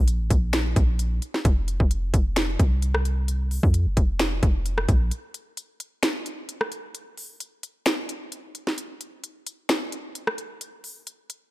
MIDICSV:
0, 0, Header, 1, 3, 480
1, 0, Start_track
1, 0, Tempo, 458015
1, 1520, Time_signature, 4, 2, 24, 8
1, 12061, End_track
2, 0, Start_track
2, 0, Title_t, "808-style bass"
2, 0, Program_c, 0, 38
2, 0, Note_on_c, 0, 34, 109
2, 206, Note_on_c, 0, 33, 97
2, 222, Note_off_c, 0, 34, 0
2, 314, Note_off_c, 0, 33, 0
2, 319, Note_on_c, 0, 34, 103
2, 780, Note_off_c, 0, 34, 0
2, 800, Note_on_c, 0, 34, 106
2, 1261, Note_off_c, 0, 34, 0
2, 1520, Note_on_c, 0, 29, 113
2, 1872, Note_off_c, 0, 29, 0
2, 1887, Note_on_c, 0, 29, 105
2, 2226, Note_off_c, 0, 29, 0
2, 2239, Note_on_c, 0, 29, 101
2, 2700, Note_off_c, 0, 29, 0
2, 2720, Note_on_c, 0, 36, 106
2, 3765, Note_off_c, 0, 36, 0
2, 3807, Note_on_c, 0, 41, 110
2, 4047, Note_on_c, 0, 30, 98
2, 4063, Note_off_c, 0, 41, 0
2, 4154, Note_off_c, 0, 30, 0
2, 4160, Note_on_c, 0, 29, 103
2, 4621, Note_off_c, 0, 29, 0
2, 4640, Note_on_c, 0, 29, 106
2, 5101, Note_off_c, 0, 29, 0
2, 5121, Note_on_c, 0, 34, 110
2, 5360, Note_off_c, 0, 34, 0
2, 12061, End_track
3, 0, Start_track
3, 0, Title_t, "Drums"
3, 80, Note_on_c, 9, 42, 82
3, 185, Note_off_c, 9, 42, 0
3, 319, Note_on_c, 9, 36, 85
3, 320, Note_on_c, 9, 42, 85
3, 424, Note_off_c, 9, 36, 0
3, 425, Note_off_c, 9, 42, 0
3, 556, Note_on_c, 9, 26, 87
3, 559, Note_on_c, 9, 38, 111
3, 560, Note_on_c, 9, 42, 78
3, 661, Note_off_c, 9, 26, 0
3, 664, Note_off_c, 9, 38, 0
3, 664, Note_off_c, 9, 42, 0
3, 799, Note_on_c, 9, 42, 75
3, 800, Note_on_c, 9, 36, 101
3, 904, Note_off_c, 9, 36, 0
3, 904, Note_off_c, 9, 42, 0
3, 1040, Note_on_c, 9, 42, 88
3, 1145, Note_off_c, 9, 42, 0
3, 1280, Note_on_c, 9, 42, 70
3, 1385, Note_off_c, 9, 42, 0
3, 1408, Note_on_c, 9, 38, 71
3, 1512, Note_off_c, 9, 38, 0
3, 1520, Note_on_c, 9, 36, 118
3, 1520, Note_on_c, 9, 42, 91
3, 1625, Note_off_c, 9, 36, 0
3, 1625, Note_off_c, 9, 42, 0
3, 1760, Note_on_c, 9, 42, 76
3, 1865, Note_off_c, 9, 42, 0
3, 1887, Note_on_c, 9, 36, 93
3, 1992, Note_off_c, 9, 36, 0
3, 2000, Note_on_c, 9, 42, 83
3, 2105, Note_off_c, 9, 42, 0
3, 2240, Note_on_c, 9, 36, 86
3, 2240, Note_on_c, 9, 42, 85
3, 2344, Note_off_c, 9, 36, 0
3, 2345, Note_off_c, 9, 42, 0
3, 2476, Note_on_c, 9, 26, 89
3, 2480, Note_on_c, 9, 38, 108
3, 2480, Note_on_c, 9, 42, 78
3, 2581, Note_off_c, 9, 26, 0
3, 2584, Note_off_c, 9, 38, 0
3, 2585, Note_off_c, 9, 42, 0
3, 2720, Note_on_c, 9, 36, 104
3, 2720, Note_on_c, 9, 42, 76
3, 2825, Note_off_c, 9, 36, 0
3, 2825, Note_off_c, 9, 42, 0
3, 2960, Note_on_c, 9, 42, 87
3, 3064, Note_off_c, 9, 42, 0
3, 3086, Note_on_c, 9, 37, 102
3, 3191, Note_off_c, 9, 37, 0
3, 3200, Note_on_c, 9, 42, 70
3, 3304, Note_off_c, 9, 42, 0
3, 3440, Note_on_c, 9, 42, 93
3, 3545, Note_off_c, 9, 42, 0
3, 3680, Note_on_c, 9, 46, 76
3, 3785, Note_off_c, 9, 46, 0
3, 3807, Note_on_c, 9, 36, 92
3, 3912, Note_off_c, 9, 36, 0
3, 3920, Note_on_c, 9, 42, 83
3, 4025, Note_off_c, 9, 42, 0
3, 4160, Note_on_c, 9, 36, 87
3, 4160, Note_on_c, 9, 42, 85
3, 4265, Note_off_c, 9, 36, 0
3, 4265, Note_off_c, 9, 42, 0
3, 4396, Note_on_c, 9, 26, 89
3, 4400, Note_on_c, 9, 38, 111
3, 4400, Note_on_c, 9, 42, 76
3, 4501, Note_off_c, 9, 26, 0
3, 4504, Note_off_c, 9, 38, 0
3, 4505, Note_off_c, 9, 42, 0
3, 4640, Note_on_c, 9, 36, 104
3, 4640, Note_on_c, 9, 42, 76
3, 4745, Note_off_c, 9, 36, 0
3, 4745, Note_off_c, 9, 42, 0
3, 4880, Note_on_c, 9, 42, 88
3, 4985, Note_off_c, 9, 42, 0
3, 5006, Note_on_c, 9, 37, 100
3, 5111, Note_off_c, 9, 37, 0
3, 5120, Note_on_c, 9, 36, 92
3, 5120, Note_on_c, 9, 42, 69
3, 5225, Note_off_c, 9, 36, 0
3, 5225, Note_off_c, 9, 42, 0
3, 5360, Note_on_c, 9, 42, 90
3, 5465, Note_off_c, 9, 42, 0
3, 5600, Note_on_c, 9, 42, 74
3, 5705, Note_off_c, 9, 42, 0
3, 5840, Note_on_c, 9, 42, 83
3, 5945, Note_off_c, 9, 42, 0
3, 6080, Note_on_c, 9, 42, 82
3, 6184, Note_off_c, 9, 42, 0
3, 6316, Note_on_c, 9, 26, 87
3, 6319, Note_on_c, 9, 38, 113
3, 6319, Note_on_c, 9, 42, 77
3, 6421, Note_off_c, 9, 26, 0
3, 6424, Note_off_c, 9, 38, 0
3, 6424, Note_off_c, 9, 42, 0
3, 6560, Note_on_c, 9, 42, 79
3, 6664, Note_off_c, 9, 42, 0
3, 6799, Note_on_c, 9, 42, 83
3, 6904, Note_off_c, 9, 42, 0
3, 6926, Note_on_c, 9, 37, 103
3, 7030, Note_off_c, 9, 37, 0
3, 7039, Note_on_c, 9, 42, 66
3, 7144, Note_off_c, 9, 42, 0
3, 7279, Note_on_c, 9, 42, 93
3, 7384, Note_off_c, 9, 42, 0
3, 7519, Note_on_c, 9, 46, 75
3, 7624, Note_off_c, 9, 46, 0
3, 7759, Note_on_c, 9, 42, 85
3, 7864, Note_off_c, 9, 42, 0
3, 7999, Note_on_c, 9, 42, 82
3, 8104, Note_off_c, 9, 42, 0
3, 8235, Note_on_c, 9, 26, 89
3, 8239, Note_on_c, 9, 38, 111
3, 8239, Note_on_c, 9, 42, 78
3, 8340, Note_off_c, 9, 26, 0
3, 8343, Note_off_c, 9, 38, 0
3, 8344, Note_off_c, 9, 42, 0
3, 8479, Note_on_c, 9, 42, 77
3, 8584, Note_off_c, 9, 42, 0
3, 8719, Note_on_c, 9, 42, 86
3, 8824, Note_off_c, 9, 42, 0
3, 8959, Note_on_c, 9, 42, 68
3, 9064, Note_off_c, 9, 42, 0
3, 9087, Note_on_c, 9, 38, 70
3, 9192, Note_off_c, 9, 38, 0
3, 9200, Note_on_c, 9, 42, 92
3, 9304, Note_off_c, 9, 42, 0
3, 9439, Note_on_c, 9, 42, 75
3, 9544, Note_off_c, 9, 42, 0
3, 9680, Note_on_c, 9, 42, 83
3, 9784, Note_off_c, 9, 42, 0
3, 9920, Note_on_c, 9, 42, 83
3, 10025, Note_off_c, 9, 42, 0
3, 10156, Note_on_c, 9, 26, 88
3, 10160, Note_on_c, 9, 38, 111
3, 10160, Note_on_c, 9, 42, 79
3, 10261, Note_off_c, 9, 26, 0
3, 10264, Note_off_c, 9, 38, 0
3, 10265, Note_off_c, 9, 42, 0
3, 10400, Note_on_c, 9, 42, 76
3, 10505, Note_off_c, 9, 42, 0
3, 10640, Note_on_c, 9, 42, 88
3, 10745, Note_off_c, 9, 42, 0
3, 10766, Note_on_c, 9, 37, 103
3, 10871, Note_off_c, 9, 37, 0
3, 10880, Note_on_c, 9, 42, 68
3, 10985, Note_off_c, 9, 42, 0
3, 11120, Note_on_c, 9, 42, 88
3, 11225, Note_off_c, 9, 42, 0
3, 11360, Note_on_c, 9, 46, 74
3, 11465, Note_off_c, 9, 46, 0
3, 11600, Note_on_c, 9, 42, 86
3, 11705, Note_off_c, 9, 42, 0
3, 11840, Note_on_c, 9, 42, 83
3, 11945, Note_off_c, 9, 42, 0
3, 12061, End_track
0, 0, End_of_file